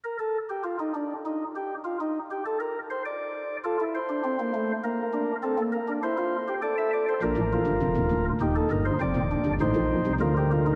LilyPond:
<<
  \new Staff \with { instrumentName = "Pipe organ" } { \time 3/4 \key bes \major \tempo 4 = 100 << { bes'16 a'8 g'16 f'16 ees'16 d'8 ees'8 g'8 | f'16 ees'8 g'16 a'16 bes'8 c''16 d''4 | a'8 c''4. bes'4 | a'8 bes'8 c''4 d''16 e''16 d''16 c''16 |
bes'2 g'16 a'16 bes'16 c''16 | d''4 c''4 bes'4 | } \\ { r2. | r2. | f'16 e'8 d'16 c'16 bes16 a8 bes8 d'8 | c'16 bes8 d'16 e'16 f'8 g'16 a'4 |
d'8 f'4. ees'4 | c'8 d'8 ees'4 f'16 g'16 f'16 ees'16 | } >> }
  \new Staff \with { instrumentName = "Pipe organ" } { \clef bass \time 3/4 \key bes \major r2. | r2. | r2. | r2. |
<bes,, bes,>16 <a,, a,>8 <g,, g,>16 <f,, f,>16 <ees,, ees,>16 <d,, d,>8 <ees,, ees,>8 <g,, g,>8 | <f,, f,>16 <ees,, ees,>8 <g,, g,>16 <a,, a,>16 <bes,, bes,>8 <c, c>16 <d, d>4 | }
>>